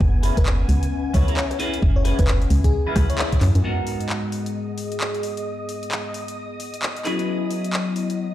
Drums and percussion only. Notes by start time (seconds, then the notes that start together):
0.01 kick
0.23 cross-stick, open hi-hat
0.37 kick, closed hi-hat
0.46 clap
0.69 open hi-hat
0.83 closed hi-hat
1.14 kick, open hi-hat
1.28 closed hi-hat
1.37 clap
1.51 cross-stick, closed hi-hat
1.60 open hi-hat
1.74 closed hi-hat
1.82 kick
2.05 cross-stick, open hi-hat
2.19 kick, closed hi-hat
2.28 clap
2.42 closed hi-hat
2.50 open hi-hat
2.64 kick, closed hi-hat
2.96 kick, cross-stick, open hi-hat
3.10 closed hi-hat
3.18 clap
3.32 kick, closed hi-hat
3.41 clap, open hi-hat
3.55 closed hi-hat
3.87 open hi-hat
4.00 closed hi-hat
4.09 clap
4.32 open hi-hat
4.46 closed hi-hat
4.78 open hi-hat
4.92 closed hi-hat
5.01 clap
5.14 closed hi-hat
5.23 open hi-hat
5.37 closed hi-hat
5.69 open hi-hat
5.83 closed hi-hat
5.92 clap
6.14 open hi-hat
6.28 closed hi-hat
6.60 open hi-hat
6.74 closed hi-hat
6.83 clap
6.96 closed hi-hat
7.05 clap, open hi-hat
7.19 closed hi-hat
7.51 open hi-hat
7.64 closed hi-hat
7.73 clap
7.96 open hi-hat
8.10 closed hi-hat